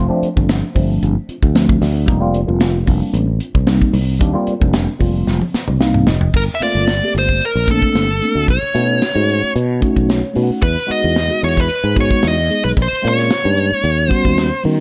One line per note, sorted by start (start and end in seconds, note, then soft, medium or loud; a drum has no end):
0.08 0.27 F3 loud
0.08 0.28 A3 medium
0.08 0.28 C4 medium
0.08 0.28 D4 loud
0.23 muted fretless electric bass stroke soft
0.23 closed hi-hat medium
0.36 0.61 G1 medium
0.36 0.64 F3 medium
0.36 0.65 A3 medium
0.36 0.65 C4 medium
0.36 0.65 D4 medium
0.36 kick medium
0.49 snare loud
0.49 closed hi-hat medium
0.75 1.00 G1 medium
0.75 1.13 F3 medium
0.75 1.14 A3 medium
0.75 1.14 C4 medium
0.75 1.14 D4 medium
0.75 kick medium
0.75 open hi-hat medium
1.03 1.15 G1 medium
1.03 closed hi-hat medium
1.29 1.35 C4 soft
1.29 1.36 F4 soft
1.29 muted fretless electric bass stroke soft
1.29 closed hi-hat medium
1.43 1.79 D2 medium
1.43 kick medium
1.54 1.83 F3 medium
1.54 1.83 A3 medium
1.54 1.84 C4 medium
1.54 1.84 D4 medium
1.54 snare medium
1.54 closed hi-hat medium
1.69 kick medium
1.82 2.06 D2 medium
1.82 snare soft
1.82 open hi-hat medium
1.95 2.01 C4 soft
1.95 2.02 D4 soft
2.06 2.46 F1 medium
2.06 2.17 G3 loud
2.06 2.18 A#3 loud
2.06 2.18 C4 medium
2.06 2.18 D#4 loud
2.06 kick loud
2.06 closed hi-hat medium
2.20 2.39 G3 medium
2.20 2.40 A#3 medium
2.20 2.40 C4 medium
2.20 2.40 F4 loud
2.34 closed hi-hat medium
2.46 2.85 F1 medium
2.46 2.76 G3 medium
2.46 2.76 A#3 medium
2.46 2.76 C4 medium
2.46 2.77 F4 medium
2.60 snare loud
2.60 closed hi-hat medium
2.86 3.01 F1 medium
2.86 3.25 G3 medium
2.86 3.26 A#3 medium
2.86 3.26 C4 medium
2.86 3.26 D4 medium
2.86 kick medium
2.86 open hi-hat medium
3.13 3.38 A1 medium
3.13 closed hi-hat medium
3.39 3.47 C4 soft
3.39 3.48 F4 soft
3.39 closed hi-hat medium
3.55 3.79 C2 medium
3.55 kick medium
3.67 3.96 G3 medium
3.67 3.96 A#3 medium
3.67 3.96 C4 medium
3.67 3.96 D#4 medium
3.67 snare loud
3.67 closed hi-hat medium
3.82 kick medium
3.93 4.18 C2 medium
3.93 open hi-hat medium
4.08 4.14 C4 soft
4.08 4.15 D#4 soft
4.20 4.34 D#2 medium
4.20 4.30 G3 loud
4.20 4.31 A#3 loud
4.20 4.31 C4 medium
4.20 4.31 D4 loud
4.20 kick medium
4.20 closed hi-hat medium
4.33 4.52 G3 loud
4.33 4.53 A#3 medium
4.33 4.53 C4 medium
4.33 4.53 F4 loud
4.47 muted fretless electric bass stroke soft
4.47 closed hi-hat medium
4.60 4.86 F1 loud
4.60 4.89 G3 medium
4.60 4.89 A#3 medium
4.60 4.90 C4 medium
4.60 4.90 D4 medium
4.60 kick medium
4.73 snare medium
4.73 closed hi-hat medium
4.99 5.25 F1 medium
4.99 5.38 G3 medium
4.99 5.39 A#3 medium
4.99 5.39 C4 medium
4.99 5.39 F4 medium
4.99 kick medium
4.99 open hi-hat medium
5.27 5.40 F1 medium
5.27 snare medium
5.42 high tom soft
5.53 5.60 C4 soft
5.53 5.61 F4 soft
5.53 muted fretless electric bass stroke soft
5.53 snare medium
5.68 6.05 C2 medium
5.68 mid tom medium
5.79 6.08 G3 medium
5.79 6.09 A#3 medium
5.79 6.09 C4 medium
5.79 6.09 D#4 medium
5.79 6.05 F5 medium
5.79 snare medium
5.94 mid tom medium
6.07 6.32 F1 medium
6.07 6.32 D#5 medium
6.07 snare loud
6.21 6.28 C4 soft
6.21 6.28 D4 soft
6.21 floor tom medium
6.33 6.47 G1 medium
6.33 6.42 A#4 medium
6.33 kick medium
6.33 crash medium
6.55 6.61 E5 medium
6.60 6.89 A3 medium
6.60 6.89 A#3 medium
6.60 6.90 C4 medium
6.60 6.90 F4 medium
6.60 7.12 D5 medium
6.60 muted fretless electric bass stroke soft
6.60 closed hi-hat medium
6.75 7.00 G1 medium
6.87 snare medium
6.87 closed hi-hat medium
7.02 7.39 A3 medium
7.02 7.40 A#3 medium
7.02 7.40 C4 medium
7.02 7.40 G4 medium
7.15 7.39 G1 medium
7.15 7.44 C5 medium
7.15 open hi-hat soft
7.29 kick medium
7.41 closed hi-hat medium
7.45 7.70 A#4 medium
7.55 7.80 A#1 medium
7.55 7.61 C4 soft
7.55 7.63 F4 soft
7.68 8.06 A3 medium
7.68 8.07 A#3 medium
7.68 8.07 C4 medium
7.68 8.07 D4 medium
7.68 8.46 A4 medium
7.68 kick medium
7.68 closed hi-hat medium
7.82 kick medium
7.95 8.19 G1 medium
7.95 snare medium
7.95 closed hi-hat medium
8.21 8.48 A3 medium
8.21 8.48 A#3 medium
8.21 8.49 C4 medium
8.21 8.49 D4 medium
8.21 closed hi-hat medium
8.35 8.47 D2 medium
8.48 8.62 B1 medium
8.48 9.52 C#5 medium
8.48 kick medium
8.48 closed hi-hat medium
8.63 muted fretless electric bass stroke soft
8.74 9.00 B2 medium
8.74 9.03 A3 medium
8.74 9.03 C#4 medium
8.74 9.04 D#4 medium
8.74 9.04 F#4 medium
8.74 closed hi-hat medium
9.02 snare medium
9.02 closed hi-hat medium
9.14 9.40 G#2 medium
9.14 9.52 A3 medium
9.14 9.53 C#4 medium
9.14 9.53 D#4 medium
9.14 9.53 F#4 medium
9.29 closed hi-hat soft
9.43 muted fretless electric bass stroke soft
9.56 9.80 B2 medium
9.56 closed hi-hat medium
9.68 9.75 D#4 soft
9.68 9.76 F#4 soft
9.81 10.20 A3 medium
9.81 10.20 C#4 medium
9.81 10.21 D#4 medium
9.81 10.21 F#4 medium
9.81 kick medium
9.81 closed hi-hat medium
9.96 10.22 B1 medium
9.96 kick medium
10.09 10.42 C#5 medium
10.09 snare medium
10.09 closed hi-hat medium
10.34 10.49 B2 medium
10.34 10.61 A3 medium
10.34 10.62 C#4 medium
10.34 10.62 D#4 medium
10.34 10.63 F#4 medium
10.34 open hi-hat medium
10.43 10.60 F#5 medium
10.50 muted fretless electric bass stroke soft
10.62 10.76 E2 medium
10.62 10.90 B4 medium
10.62 kick medium
10.62 closed hi-hat medium
10.86 11.16 G#3 medium
10.86 11.17 B3 medium
10.86 11.17 D#4 medium
10.86 11.17 F#4 medium
10.86 muted fretless electric bass stroke soft
10.86 closed hi-hat soft
10.91 11.40 D#5 medium
11.04 11.29 E2 medium
11.16 snare loud
11.16 closed hi-hat medium
11.28 11.66 G#3 medium
11.28 11.67 B3 medium
11.28 11.67 D#4 medium
11.28 11.68 F#4 medium
11.43 11.68 E2 medium
11.43 11.58 C#5 medium
11.43 open hi-hat medium
11.57 11.96 B4 medium
11.57 kick medium
11.70 closed hi-hat medium
11.84 12.09 G#2 medium
11.95 12.34 G#3 medium
11.95 12.35 B3 medium
11.95 12.35 D#4 medium
11.95 12.35 F#4 medium
11.95 kick medium
11.95 closed hi-hat medium
12.01 12.26 C#5 medium
12.11 kick medium
12.23 12.48 E2 medium
12.23 snare medium
12.23 closed hi-hat medium
12.28 12.62 D#5 medium
12.49 12.76 G#3 medium
12.49 12.76 B3 soft
12.49 12.77 D#4 medium
12.49 12.77 G#4 medium
12.49 closed hi-hat medium
12.64 12.76 B1 medium
12.64 12.69 B4 medium
12.77 12.90 A#1 medium
12.77 kick medium
12.77 closed hi-hat medium
12.82 13.07 C5 medium
13.02 13.29 A#2 medium
13.02 13.31 G#3 medium
13.02 13.32 C4 medium
13.02 13.32 C#4 medium
13.02 13.32 F4 medium
13.02 closed hi-hat medium
13.08 14.07 C#5 medium
13.19 snare soft
13.30 snare loud
13.30 closed hi-hat medium
13.43 13.70 G2 medium
13.43 13.81 G#3 medium
13.43 13.81 A#3 medium
13.43 13.82 C#4 medium
13.43 13.82 D#4 medium
13.57 closed hi-hat medium
13.72 muted fretless electric bass stroke soft
13.84 14.09 D#2 medium
13.84 closed hi-hat medium
13.97 14.03 C#4 soft
13.97 14.05 F#4 soft
14.07 14.48 G3 medium
14.07 14.48 B3 medium
14.07 14.49 C#4 medium
14.07 14.49 F#4 loud
14.07 14.63 C5 medium
14.07 kick medium
14.07 closed hi-hat medium
14.25 14.50 D#2 medium
14.25 kick medium
14.38 snare medium
14.38 closed hi-hat medium
14.63 14.78 D#3 medium
14.63 14.80 G3 medium
14.63 14.80 B3 medium
14.63 14.80 C#4 medium
14.63 14.80 F#4 medium
14.63 open hi-hat medium